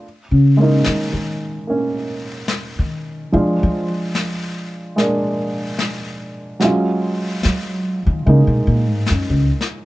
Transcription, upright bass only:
0.31 0.82 C#3 medium
0.87 1.12 D#3 medium
1.13 1.58 D#3 medium
2.79 3.30 D#3 medium
3.33 3.60 F3 medium
3.63 3.90 F3 medium
7.45 8.06 F#3 medium
8.06 8.22 D#3 medium
8.27 8.47 C#3 medium
8.47 8.66 B2 medium
8.67 8.90 A#2 medium
8.90 9.05 G#2 medium
9.10 9.29 F#2 medium
9.30 9.49 C#2 medium

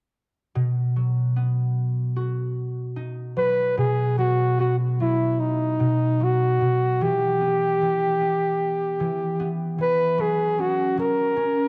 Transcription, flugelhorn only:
3.38 3.75 B4 medium
3.79 4.16 G#4 medium
4.19 4.56 F#4 medium
4.60 4.76 F#4 medium
5.02 5.41 E4 medium
5.40 6.25 D#4 medium
6.23 7.04 F#4 medium
7.03 9.53 G4 medium
9.82 10.22 B4 medium
10.21 10.62 G#4 medium
10.61 10.99 F#4 medium
11.00 11.68 A#4 medium

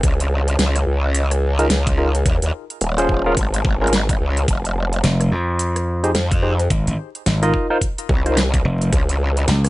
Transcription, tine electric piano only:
1.59 1.66 D#4 medium
1.59 1.66 F4 medium
1.59 1.66 G#4 medium
1.59 1.66 A#4 medium
1.98 2.08 D#4 medium
1.98 2.08 F4 medium
1.98 2.08 G#4 medium
1.98 2.08 A#4 medium
2.98 3.22 C#4 medium
2.98 3.22 F4 medium
2.98 3.22 G#4 medium
2.98 3.22 C5 loud
3.26 3.33 C#4 medium
3.26 3.32 F4 medium
3.26 3.32 G#4 medium
3.26 3.32 A#4 loud
3.81 3.92 C#4 medium
3.81 3.92 F4 medium
3.81 3.92 G#4 medium
3.81 3.92 A#4 medium
6.04 6.10 D#4 medium
6.04 6.10 G4 medium
6.04 6.10 G#4 medium
6.04 6.10 C5 medium
6.43 6.52 D#4 medium
6.43 6.52 G4 medium
6.43 6.52 G#4 medium
6.43 6.52 C5 medium
7.43 7.66 D#4 medium
7.43 7.66 F4 medium
7.43 7.66 A#4 medium
7.43 7.66 D#5 loud
7.70 7.77 D#4 loud
7.70 7.77 F4 medium
7.70 7.77 A#4 medium
7.70 7.77 C5 loud
8.26 8.36 D#4 medium
8.26 8.36 F4 medium
8.26 8.36 A#4 medium
8.26 8.36 C5 medium

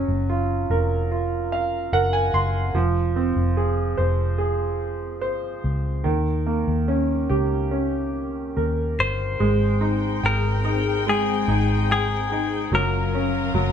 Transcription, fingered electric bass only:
0.08 0.66 F#1 medium
0.70 1.89 F1 medium
1.93 2.31 F#1 medium
2.33 2.72 F#1 medium
2.74 3.32 F1 medium
3.36 3.94 F1 medium
3.99 5.22 F1 medium
5.22 5.61 G1 medium
5.64 6.02 C#2 medium
6.05 6.63 D#2 medium
6.68 7.26 D#2 medium
7.30 8.53 C#2 medium
8.57 8.96 D#2 medium
8.99 9.38 G1 medium
9.40 10.20 G#1 medium
10.24 11.44 G#1 medium
11.48 12.68 G#1 medium
12.72 13.50 F#1 medium
13.54 13.72 F#1 medium

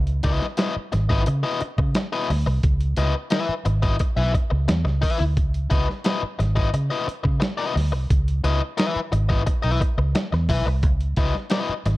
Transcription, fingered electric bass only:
0.00 0.21 C#2 medium
0.24 0.40 C#2 loud
0.76 muted fingered electric bass stroke soft
0.93 1.24 G#1 medium
1.28 1.43 C#3 loud
1.62 muted fingered electric bass stroke soft
1.78 1.94 C#3 loud
2.30 2.45 D2 medium
2.47 2.62 C2 medium
2.64 2.94 C#2 loud
2.97 3.13 C#2 medium
3.49 muted fingered electric bass stroke medium
3.66 3.97 G#1 medium
4.17 4.32 B1 medium
4.52 4.67 C#2 loud
4.68 4.84 E2 medium
4.85 5.01 C#2 medium
5.21 5.37 D2 medium
5.37 5.68 C#2 medium
5.71 5.87 C#2 loud
6.23 muted fingered electric bass stroke soft
6.40 6.70 G#1 medium
6.74 6.89 C#3 medium
7.08 muted fingered electric bass stroke soft
7.25 7.40 C#3 loud
7.76 7.93 D2 loud
7.93 8.08 C2 medium
8.11 8.41 C#2 medium
8.44 8.60 C#2 medium
8.96 muted fingered electric bass stroke medium
9.13 9.43 G#1 loud
9.64 9.80 B1 medium
9.98 10.13 C#2 loud
10.33 10.48 E2 medium
10.49 10.65 B1 medium
10.67 10.83 C2 medium
10.83 11.14 C#2 loud
11.17 11.33 C#2 medium
11.69 muted fingered electric bass stroke soft
11.86 11.97 G#1 medium

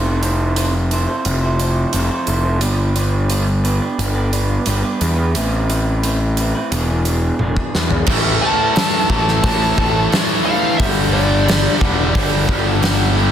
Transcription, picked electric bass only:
0.00 1.06 F1 medium
1.26 1.84 F1 medium
1.94 2.09 F1 medium
2.28 2.62 F1 medium
2.62 3.79 G1 medium
3.99 4.57 G1 medium
4.67 4.82 G1 medium
5.01 5.36 E2 medium
5.36 6.53 A1 medium
6.72 7.30 E1 medium
7.41 7.55 E1 medium
7.75 8.04 E2 medium
8.08 8.37 A1 loud
9.10 9.39 A1 loud
9.44 9.73 A1 medium
9.78 10.07 A1 loud
10.80 11.67 G1 loud
11.81 12.10 E1 loud
12.16 12.44 G1 loud
12.49 13.32 G1 loud

